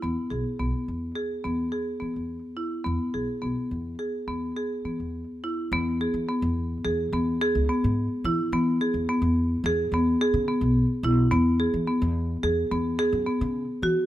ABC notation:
X:1
M:5/4
L:1/16
Q:1/4=106
K:E
V:1 name="Marimba"
B,2 G2 B,4 G2 B,2 G2 B,4 E2 | B,2 G2 B,4 G2 B,2 G2 B,4 E2 | B,2 G2 B,4 G2 B,2 G2 B,4 E2 | B,2 G2 B,4 G2 B,2 G2 B,4 E2 |
B,2 G2 B,4 G2 B,2 G2 B,4 F2 |]
V:2 name="Upright bass" clef=bass
E,, z B,,, z B,,, z E,,2 z2 E,,2 z2 E, E,,2 z3 | E,, z B,,, z B,,, z E,,2 z2 E,,2 z2 E, E,,2 z3 | E,,3 E, z E,,3 E,,2 E,,2 z C,, z G,,2 z E, z | E,2 z E,, z E,,3 E,,2 E,,2 z C, z B,,,2 z B,,,2 |
E,,3 E, z E,,3 E,,2 E,,2 z F,, z C,2 z E, z |]